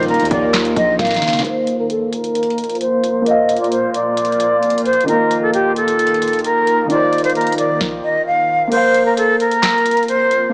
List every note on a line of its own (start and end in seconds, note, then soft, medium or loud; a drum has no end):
0.00 0.21 D#1 loud
0.00 1.39 D#3 medium
0.00 1.41 D#3 medium
0.00 1.41 A#3 medium
0.00 1.40 D#4 medium
0.00 1.41 D#4 medium
0.00 1.41 F4 medium
0.00 1.42 F4 medium
0.00 1.42 A#4 medium
0.00 closed hi-hat medium
0.08 0.30 A#4 medium
0.08 closed hi-hat soft
0.14 closed hi-hat medium
0.20 0.30 D#2 loud
0.20 closed hi-hat medium
0.25 closed hi-hat medium
0.31 0.75 D#2 loud
0.31 0.52 D5 medium
0.31 kick medium
0.31 closed hi-hat medium
0.54 snare loud
0.54 clap loud
0.54 closed hi-hat medium
0.65 closed hi-hat medium
0.76 0.98 A#1 loud
0.76 0.98 D#5 medium
0.76 kick medium
0.76 closed hi-hat medium
0.99 1.21 D1 loud
0.99 1.42 F5 medium
0.99 kick loud
0.99 snare medium
0.99 closed hi-hat soft
1.05 snare medium
1.05 closed hi-hat medium
1.11 snare medium
1.11 closed hi-hat medium
1.16 snare medium
1.22 snare medium
1.22 closed hi-hat medium
1.28 snare medium
1.28 closed hi-hat medium
1.33 snare loud
1.33 closed hi-hat soft
1.39 3.20 A#3 medium
1.39 snare medium
1.43 5.05 A#2 medium
1.43 5.04 A#3 medium
1.43 7.77 F4 medium
1.43 3.22 A#4 medium
1.43 5.04 C5 medium
1.43 1.77 C5 medium
1.43 3.23 C5 medium
1.43 closed hi-hat medium
1.49 3.25 F5 medium
1.67 closed hi-hat medium
1.79 1.89 A#4 medium
1.90 2.12 A4 medium
1.90 closed hi-hat medium
2.13 2.77 A#4 medium
2.13 closed hi-hat medium
2.24 closed hi-hat medium
2.35 closed hi-hat medium
2.43 closed hi-hat medium
2.50 closed hi-hat soft
2.58 closed hi-hat medium
2.64 closed hi-hat medium
2.70 closed hi-hat medium
2.75 closed hi-hat soft
2.81 3.24 C5 medium
2.81 closed hi-hat medium
3.04 closed hi-hat medium
3.22 5.02 A#3 medium
3.22 5.04 A#4 medium
3.26 5.05 C5 medium
3.26 3.58 D#5 loud
3.26 closed hi-hat medium
3.31 5.07 F5 medium
3.49 closed hi-hat medium
3.57 closed hi-hat medium
3.61 3.71 D5 medium
3.61 closed hi-hat soft
3.72 3.93 C5 medium
3.72 closed hi-hat medium
3.94 4.82 D5 medium
3.94 closed hi-hat medium
4.17 closed hi-hat medium
4.25 closed hi-hat medium
4.32 closed hi-hat soft
4.40 closed hi-hat medium
4.63 closed hi-hat soft
4.70 closed hi-hat medium
4.78 closed hi-hat medium
4.85 5.07 C5 medium
4.85 closed hi-hat medium
4.93 closed hi-hat medium
5.01 6.84 D#3 medium
5.01 closed hi-hat medium
5.07 7.78 D#2 medium
5.07 7.78 D#3 medium
5.07 7.78 A#3 medium
5.07 6.86 D#4 medium
5.07 6.87 F4 medium
5.07 5.40 A#4 medium
5.07 closed hi-hat medium
5.13 6.89 A#3 medium
5.31 closed hi-hat medium
5.42 5.53 A4 medium
5.54 5.75 G4 medium
5.54 closed hi-hat medium
5.76 6.41 A4 medium
5.76 closed hi-hat medium
5.88 closed hi-hat medium
5.99 closed hi-hat medium
6.07 closed hi-hat medium
6.14 closed hi-hat soft
6.22 closed hi-hat medium
6.27 closed hi-hat medium
6.33 closed hi-hat medium
6.39 closed hi-hat soft
6.44 6.87 A#4 medium
6.44 closed hi-hat medium
6.67 closed hi-hat medium
6.86 8.66 D#3 medium
6.86 8.67 D#4 medium
6.90 8.69 F4 medium
6.90 7.22 D5 loud
6.90 closed hi-hat medium
6.95 8.71 C5 medium
7.13 closed hi-hat medium
7.18 closed hi-hat medium
7.24 7.35 C5 medium
7.24 closed hi-hat medium
7.30 closed hi-hat medium
7.35 7.57 A#4 medium
7.35 closed hi-hat soft
7.41 closed hi-hat medium
7.47 closed hi-hat medium
7.52 closed hi-hat medium
7.58 7.79 D5 medium
7.58 closed hi-hat medium
7.81 kick loud
7.81 snare medium
8.04 8.25 D#5 medium
8.26 8.69 F5 medium
8.68 10.48 A#3 medium
8.68 10.49 A#4 medium
8.68 9.04 C5 loud
8.72 10.53 A#3 medium
8.72 10.53 C4 medium
8.72 10.53 F4 medium
8.72 10.51 C5 medium
8.72 closed hi-hat medium
8.72 crash medium
8.77 10.52 F5 medium
8.95 closed hi-hat medium
9.06 9.16 A#4 medium
9.17 9.39 A4 medium
9.17 closed hi-hat medium
9.40 10.04 A#4 medium
9.40 closed hi-hat medium
9.51 closed hi-hat medium
9.63 snare loud
9.63 clap loud
9.63 closed hi-hat medium
9.70 closed hi-hat medium
9.78 closed hi-hat soft
9.86 closed hi-hat medium
9.91 closed hi-hat medium
9.97 closed hi-hat medium
10.03 closed hi-hat soft
10.08 10.51 C5 medium
10.08 closed hi-hat medium
10.31 closed hi-hat medium
10.50 10.53 A#3 medium